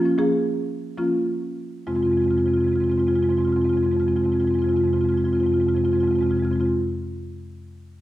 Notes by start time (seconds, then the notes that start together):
Already playing: F3 A#3 C#4 F4
0.05 F3 A#3 C#4
0.18 F3 A#3 C#4 G#4
0.98 F3 A#3 C#4 F4
1.87 F2 C3 G#3 C4 F4
1.95 F2 C3 G#3 C4 F4
2.03 C3 G#3 C4 F4
2.07 F2 F4
2.12 C3 G#3 C4
2.16 F2 G#3 F4
2.22 F2 C3 C4 F4
2.28 G#3 C4 F4
2.34 F2 C3 G#3 F4
2.40 C4
2.44 F2 C3 G#3 F4
2.48 C4
2.53 F2 C3 G#3 C4 F4
2.60 C3 G#3 F4
2.64 F2 C4 F4
2.72 C3 G#3 C4 F4
2.77 F2 C3 C4
2.81 G#3 F4
2.88 F2 C3 G#3 C4 F4
2.97 F2 C3 G#3 C4 F4
3.07 F2 G#3 C4 F4
3.11 C3 C4
3.15 F2 G#3 F4
3.21 C3 G#3 C4 F4
3.29 F2 C3 G#3 C4 F4
3.37 F2 C3 G#3 C4 F4
3.45 F2 C3 C4 F4
3.49 G#3 F4
3.56 F2 C3 G#3 C4
3.61 C4 F4
3.65 F2 C3 G#3
3.69 C4 F4
3.74 F2 C3 G#3 F4
3.83 F2 C3 G#3 C4 F4
3.91 C3 G#3 C4 F4
3.96 F2 C4 F4
4.01 C3 G#3
4.07 F2 G#3 C4 F4
4.12 F2 C3 G#3
4.17 C4 F4
4.21 C3 G#3 F4
4.25 F2 C4
4.30 C3 G#3 C4 F4
4.35 F2 C3
4.40 G#3 C4 F4
4.45 F2 C3 G#3 F4
4.51 F2 C4 F4
4.55 C3 G#3 C4
4.62 F2 G#3 F4
4.66 C3 C4 F4
4.73 F2 C3 G#3 C4 F4
4.81 F2 C3 G#3 F4
4.85 G#3 C4
4.93 F2 C3 G#3 C4 F4
5.01 F2 C3 C4 F4
5.05 G#3
5.09 C3 G#3 C4 F4
5.13 F2 F4
5.18 C3 G#3 C4
5.24 F2 C4 F4
5.28 C3 G#3
5.33 F2 C4 F4
5.37 C3 G#3 F4
5.43 F2 G#3 C4 F4
5.49 C3 G#3 C4
5.54 F2 C3 F4
5.60 G#3 C4 F4
5.66 F2 C3 G#3 C4 F4
5.74 F2 C3 G#3 C4 F4
5.84 F2 C3 G#3 C4 F4
5.92 F2 G#3 C4 F4
5.97 C3 F4
6.02 F2 C3 G#3 C4
6.07 C4 F4
6.12 F2 C3 G#3 F4
6.19 F2 G#3 C4 F4
6.24 C3 C4
6.30 F2 C3 G#3 F4
6.35 C4 F4
6.39 F2 C3 G#3
6.44 G#3 C4 F4
6.51 F2 C3 C4 F4
6.56 G#3
6.60 F2 C3 C4 F4
6.65 G#3